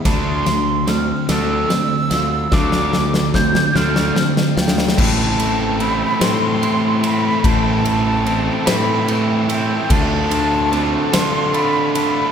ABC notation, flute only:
X:1
M:6/8
L:1/8
Q:3/8=49
K:Am
V:1 name="Flute"
c'2 f' e'3 | d'2 g' f'2 g | a2 b c'2 b | a3 b z g |
a3 c' b b |]